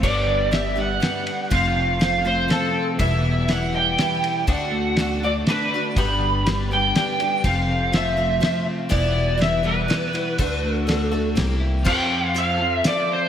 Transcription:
0.03 G1 G2 D3 G3 B3 D4 G4 D5, kick, crash
0.27 D3
0.51 G3 B3 D4 G4 E5, snare, ride
0.76 G3 B3 D4 G4
0.80 F#5
1.00 G3 B3 D4 G4, snare, ride
1.27 D4, ride
1.50 F1 F2 C3 F3 A3 C4 F4, kick, ride
1.55 F5
1.76 C3
1.99 F3 A3 C4 F4, snare, ride
2.25 F3 A3 C4 F4 C5
2.48 F3 A3 C4 F4 A4, snare, ride
2.73 C4
2.99 E1 E2 B2 E3 G3 B3 E4 E5, kick, ride
3.21 B2
3.48 E3 G3 B3 E4 F#5, snare, ride
3.73 G3 G5
3.98 E3 G3 B3 E4, snare, ride
4.21 B3, ride
4.47 D2 D3 A3 D4 F#4 F#5, kick, ride
4.71 A3
4.97 D3 A3 D4 F#4, snare, ride
5.20 A3 D4 F#4
5.25 A3 D5
5.47 D3 A3 D4 F#4 B4, snare, ride
5.69 D4
5.74 A3 D4 F#4
5.96 G1 G2 D3 G3 B3 D4 G4 B5, kick, ride
6.18 D3
6.46 G3 B3 D4 G4, snare, ride
6.69 B3 D4 G4
6.73 G3 B3 G5
6.95 G3 B3 D4 G4 G5, snare, ride
7.20 G3 B3 D4 G4, ride
7.44 F1 F2 C3 F3 A3 C4 F4 F5, kick, ride
7.67 C3
7.92 F3 A3 C4 F4 E5, snare, ride
8.17 F3 A3 C4 F4
8.40 F3 A3 C4 F4, snare, ride
8.66 C4
8.89 E1 E2 B2 E3 G3 B3 E4 D5, kick, ride
9.16 B2
9.38 E3 G3 B3 E4, ride
9.42 E5, snare
9.63 E3 G3 B3 E4 B4
9.88 E3 G3 B3 E4, snare, ride
10.13 E3 G3 B3 E4, ride
10.38 D2 D3 A3 D4 F#4, kick, ride
10.63 A3
10.77 A4
10.87 D3 A3 D4 F#4, snare, ride
11.12 A3 D4 F#4
11.35 C2 C3 G3 A#3 E4 G4, snare, ride
11.60 E4
11.84 F2 F3 C4 F4 A4 G5, kick, crash
12.34 F3 C4 F4 A4 F5, closed hi-hat
12.58 F3 C4 F4 A4
12.75 E5
12.84 F3 C4 F4 A4 D5, snare, closed hi-hat
13.12 C5

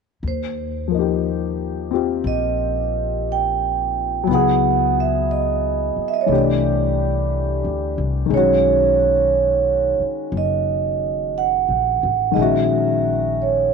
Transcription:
0.23 D#2
0.28 C5
0.88 F3 A#3
0.94 D#4
0.99 G4
1.91 C4 F4 G4
2.24 A#1 D#5
3.32 G5
4.24 C#2 F#3 B3
4.31 E4 G#4 F#5
5.00 E5
5.31 D#5
5.96 muted upright bass stroke
6.08 E5
6.14 D#5
6.21 C#5
6.26 C2 E3 A3 D4 D#5
6.32 G4 D5
7.64 D2
7.98 C2
8.26 D#3 G#3
8.30 B1 C#4 C#5
8.37 F#4
9.99 muted upright bass stroke
10.32 F#1
10.37 D#5
11.38 F#5
11.68 A#1
12.03 A1
12.31 D#3 G#3 D#5
12.36 A#1 C#4 E5
12.42 F#4
13.42 C#5

